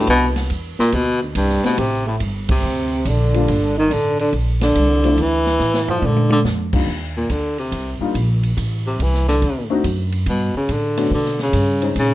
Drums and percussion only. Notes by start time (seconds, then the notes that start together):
0.07 kick, ride
0.36 snare, ride
0.50 kick, hi-hat pedal, ride
0.79 snare
0.92 kick, ride
1.35 kick, hi-hat pedal, ride
1.50 snare
1.64 snare, ride
1.78 kick, ride
2.20 kick, hi-hat pedal, ride
2.49 kick, ride
3.05 kick, hi-hat pedal, ride
3.34 ride
3.48 kick, ride
3.91 kick, hi-hat pedal, ride
4.19 ride
4.33 kick, ride
4.61 snare, ride
4.75 kick, hi-hat pedal, ride
5.04 ride
5.18 kick, ride
5.46 snare
5.60 snare, hi-hat pedal
5.74 snare
5.88 floor tom
6.02 high tom
6.16 high tom
6.30 high tom
6.45 snare, hi-hat pedal
6.73 kick, crash
6.87 kick
7.30 kick, hi-hat pedal, ride
7.58 ride
7.72 kick, ride
8.15 kick, hi-hat pedal, ride
8.43 ride
8.57 kick, ride
8.99 kick, hi-hat pedal, ride
9.14 snare
9.28 snare
9.42 kick, ride
9.84 kick, hi-hat pedal, ride
10.12 ride
10.26 kick, ride
10.69 kick, hi-hat pedal, ride
10.97 ride
11.11 kick
11.25 snare
11.39 snare
11.53 kick, hi-hat pedal, ride
11.82 ride
11.96 kick, ride